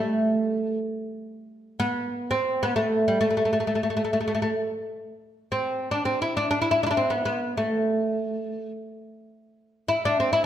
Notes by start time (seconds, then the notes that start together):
Already playing: A3
1.80 B3
2.31 C4
2.63 B3
2.76 A3
3.08 G3
3.21 A3
3.30 A3
3.37 A3
3.45 A3
3.53 A3
3.60 A3
3.67 A3
3.75 A3
3.83 A3
3.90 A3
3.97 A3
4.05 A3
4.13 A3
4.21 A3
4.28 A3
4.35 A3
4.42 A3
5.52 C4
5.91 D4
6.05 C4
6.22 E4
6.37 D4
6.51 D4
6.62 E4
6.71 E4
6.83 D4 E4
6.91 D4
6.97 C4
7.10 B3
7.25 B3
7.57 A3
9.89 E4
10.05 D4
10.20 C4
10.33 E4